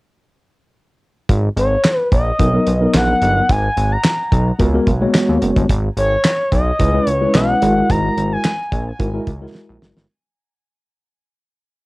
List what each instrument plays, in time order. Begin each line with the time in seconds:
1.29 analog synth bass G#1, kick, closed hi-hat
1.56 analog synth bass G#1, analog synth lead C#5, closed hi-hat
1.84 snare, clap, closed hi-hat
2.12 analog synth bass A#1, analog synth lead D#5, kick, closed hi-hat
2.39 analog synth bass B1, tine electric piano F#3 B3 D#4 A#4, kick, closed hi-hat
2.53 tine electric piano F#3 B3 D#4 A#4
2.67 analog synth bass B1, closed hi-hat
2.81 tine electric piano F#3 B3 D#4 A#4
2.94 analog synth bass A#1, analog synth lead F#5, snare, clap, closed hi-hat
3.22 analog synth bass G1, closed hi-hat
3.49 analog synth bass G#1, analog synth lead G#5, kick, closed hi-hat
3.77 analog synth bass G#1, closed hi-hat
3.92 analog synth lead A#5
4.04 snare, clap, closed hi-hat
4.32 analog synth bass B1, kick, closed hi-hat
4.59 analog synth bass C#2, tine electric piano G#3 B3 F#4 A#4, kick, closed hi-hat
4.74 tine electric piano G#3 B3 F#4 A#4
4.87 analog synth bass B1, kick, closed hi-hat
5.01 tine electric piano G#3 A#3 F#4 C#5
5.08 tine electric piano B3
5.14 snare, clap, closed hi-hat
5.29 analog synth bass D#2
5.42 analog synth bass F#1, closed hi-hat
5.56 analog synth bass G1, kick, closed hi-hat
5.69 analog synth bass G#1, kick, closed hi-hat
5.97 analog synth bass G#1, analog synth lead C#5, closed hi-hat
6.24 snare, clap, closed hi-hat
6.52 analog synth bass B1, analog synth lead D#5, kick, closed hi-hat
6.79 analog synth bass C#2, tine electric piano G#3 C#4 E4 B4, kick, closed hi-hat
6.94 tine electric piano G#3 C#4 E4 B4
7.07 analog synth bass C#2, analog synth lead C#5, closed hi-hat
7.21 tine electric piano G#3 C#4 E4 B4
7.35 analog synth bass B1, analog synth lead F#5, snare, clap, closed hi-hat
7.61 analog synth bass G#1, tine electric piano G#3 E4 F#4 A#4, closed hi-hat
7.90 analog synth bass G#1, analog synth lead A#5, kick, closed hi-hat
8.17 analog synth bass G#1, closed hi-hat
8.32 analog synth lead G#5
8.44 snare, clap, closed hi-hat
8.72 analog synth bass A#1, kick, closed hi-hat
8.99 analog synth bass G#1, tine electric piano G#3 E4 F#4 A#4, kick, closed hi-hat
9.14 tine electric piano G#3 E4 F#4 A#4
9.27 analog synth bass C#2, kick, closed hi-hat
9.41 tine electric piano G#3 E4 F#4 A#4
9.55 snare
9.69 analog synth bass A#1
9.82 analog synth bass F#1, snare
9.97 analog synth bass G1, snare